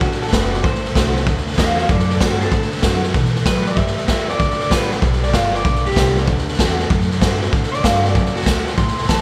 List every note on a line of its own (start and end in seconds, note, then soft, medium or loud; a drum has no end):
0.01 0.32 A1 medium
0.01 0.31 D3 medium
0.01 0.22 F#4 medium
0.01 kick loud
0.01 snare soft
0.11 snare soft
0.22 0.33 A4 medium
0.22 snare soft
0.28 snare soft
0.33 0.63 F#1 medium
0.33 0.52 D3 medium
0.33 0.53 A3 medium
0.33 0.53 C4 medium
0.33 0.52 F#4 loud
0.33 0.53 B4 loud
0.33 kick medium
0.33 snare loud
0.33 hi-hat pedal medium
0.53 0.65 C4 soft
0.53 0.64 F#4 medium
0.53 0.63 D5 medium
0.53 snare soft
0.64 0.94 A1 medium
0.64 1.25 A2 medium
0.64 1.25 C5 medium
0.64 kick loud
0.64 snare soft
0.75 snare soft
0.85 snare soft
0.95 1.26 C2 medium
0.95 1.15 D3 medium
0.95 1.15 A3 medium
0.95 1.15 C4 medium
0.95 1.14 F#4 medium
0.95 kick medium
0.95 snare loud
0.95 hi-hat pedal medium
1.15 1.27 C4 soft
1.15 1.26 F#4 medium
1.15 snare soft
1.27 1.57 D2 medium
1.27 1.57 D3 medium
1.27 kick loud
1.27 snare soft
1.37 snare soft
1.47 snare soft
1.53 snare soft
1.58 1.88 E2 loud
1.58 1.77 D3 medium
1.58 1.78 A3 loud
1.58 1.78 C4 medium
1.58 1.76 F#4 medium
1.58 1.77 C5 medium
1.58 1.78 F5 medium
1.58 kick medium
1.58 snare loud
1.58 hi-hat pedal medium
1.77 1.90 C4 soft
1.77 1.89 F#4 medium
1.77 1.88 C5 medium
1.77 1.89 F5 medium
1.77 snare soft
1.89 2.20 F#2 loud
1.89 2.50 A2 loud
1.89 2.08 A4 medium
1.89 2.09 D5 medium
1.89 kick loud
1.89 snare soft
1.99 snare soft
2.10 2.20 A4 medium
2.10 2.22 D5 medium
2.10 snare soft
2.19 2.51 G2 loud
2.19 2.40 D3 medium
2.19 2.40 A3 medium
2.19 2.40 C4 medium
2.19 2.39 F#4 loud
2.19 2.40 A4 medium
2.19 2.40 C5 medium
2.19 kick medium
2.19 snare loud
2.19 hi-hat pedal medium
2.41 2.53 C4 soft
2.41 2.51 F#4 medium
2.41 2.51 A4 medium
2.41 2.52 C5 medium
2.41 snare soft
2.51 2.82 A2 medium
2.51 2.81 D3 medium
2.51 2.83 A4 loud
2.51 kick loud
2.51 snare soft
2.62 snare soft
2.71 snare soft
2.77 snare soft
2.82 3.13 F#2 medium
2.82 3.02 D3 medium
2.82 3.03 A3 medium
2.82 3.03 C4 medium
2.82 3.01 F#4 loud
2.82 kick medium
2.82 snare loud
2.82 hi-hat pedal medium
3.03 3.15 C4 soft
3.03 3.14 F#4 medium
3.03 snare soft
3.14 3.45 B2 loud
3.14 3.45 E3 medium
3.14 kick loud
3.14 snare soft
3.25 snare soft
3.35 snare soft
3.46 3.76 A2 medium
3.46 3.76 F#3 medium
3.46 3.66 B4 loud
3.46 kick medium
3.46 snare loud
3.46 hi-hat pedal medium
3.66 3.78 D5 medium
3.66 snare soft
3.76 4.07 G2 medium
3.76 4.07 G3 medium
3.76 4.08 E5 medium
3.76 kick loud
3.76 snare soft
3.87 snare soft
3.97 snare soft
4.08 4.39 E2 medium
4.08 4.28 G3 medium
4.08 4.28 B3 medium
4.08 4.28 F4 loud
4.08 4.29 E5 loud
4.08 kick medium
4.08 snare medium
4.08 hi-hat pedal medium
4.29 4.40 B3 soft
4.29 4.39 F4 medium
4.29 4.39 D5 medium
4.29 snare soft
4.39 4.70 D2 loud
4.39 5.00 D3 medium
4.39 4.59 D5 medium
4.39 kick loud
4.39 snare soft
4.50 snare soft
4.60 4.71 D5 medium
4.60 snare soft
4.69 5.01 A1 loud
4.69 4.90 G3 medium
4.69 4.90 B3 medium
4.69 4.89 F4 loud
4.69 4.91 B4 loud
4.69 kick medium
4.69 snare loud
4.69 hi-hat pedal medium
4.91 5.03 B3 soft
4.91 5.02 F4 medium
4.91 snare soft
5.02 5.33 B1 medium
5.02 5.31 G3 medium
5.02 kick loud
5.02 snare soft
5.12 snare soft
5.23 5.34 D5 loud
5.23 snare soft
5.32 5.64 G1 loud
5.32 5.52 G3 medium
5.32 5.53 B3 medium
5.32 5.52 F4 loud
5.32 5.54 F5 loud
5.32 kick medium
5.32 snare loud
5.32 hi-hat pedal medium
5.53 5.65 B3 soft
5.53 5.64 F4 medium
5.53 5.85 D5 medium
5.53 snare soft
5.65 5.95 B1 medium
5.65 6.25 D3 medium
5.65 kick loud
5.65 snare soft
5.75 snare soft
5.85 6.16 G4 loud
5.85 snare soft
5.91 snare soft
5.96 6.27 C2 medium
5.96 6.26 G3 medium
5.96 6.27 B3 medium
5.96 6.27 F4 medium
5.96 kick medium
5.96 snare loud
5.96 hi-hat pedal medium
6.17 snare soft
6.27 6.58 D2 medium
6.27 6.57 D3 loud
6.27 kick loud
6.27 snare soft
6.38 snare soft
6.48 snare soft
6.54 snare soft
6.58 6.89 E2 loud
6.58 6.78 D3 medium
6.58 6.78 A3 loud
6.58 6.79 C4 loud
6.58 6.77 F#4 loud
6.58 kick medium
6.58 snare loud
6.58 hi-hat pedal medium
6.79 6.91 C4 medium
6.79 6.89 F#4 medium
6.79 snare soft
6.90 7.21 F#2 loud
6.90 7.50 A2 medium
6.90 kick loud
6.90 snare soft
7.01 snare soft
7.11 snare soft
7.21 7.52 G2 loud
7.21 7.41 D3 medium
7.21 7.41 A3 loud
7.21 7.41 C4 loud
7.21 7.40 F#4 loud
7.21 kick medium
7.21 snare loud
7.21 hi-hat pedal medium
7.41 7.53 C4 medium
7.41 7.52 F#4 medium
7.41 snare soft
7.52 7.83 A2 medium
7.52 7.83 D3 loud
7.52 kick loud
7.52 snare soft
7.63 snare soft
7.72 7.83 D5 loud
7.72 snare soft
7.84 8.14 G2 loud
7.84 8.03 D3 loud
7.84 8.04 A3 medium
7.84 8.04 C4 loud
7.84 8.03 F#4 loud
7.84 8.05 F5 medium
7.84 kick medium
7.84 snare loud
7.84 hi-hat pedal medium
8.04 8.16 C4 medium
8.04 8.15 F#4 medium
8.04 8.35 D5 medium
8.04 snare soft
8.15 8.46 F#2 loud
8.15 8.46 F#2 medium
8.15 kick loud
8.15 snare soft
8.26 snare soft
8.36 8.66 F#4 medium
8.36 snare soft
8.41 snare soft
8.46 8.77 D2 loud
8.46 8.77 B2 medium
8.46 kick medium
8.46 snare loud
8.46 hi-hat pedal medium
8.67 snare soft
8.78 9.08 C#2 loud
8.78 9.21 A2 loud
8.78 9.08 C6 medium
8.78 kick loud
8.78 snare soft
8.88 snare soft
8.98 snare soft
9.03 snare soft
9.09 9.21 A1 medium
9.09 9.21 E3 medium
9.09 9.21 G3 medium
9.09 9.21 C#4 loud
9.09 9.21 E4 loud
9.09 9.21 A5 loud
9.09 kick medium
9.09 snare loud
9.09 hi-hat pedal medium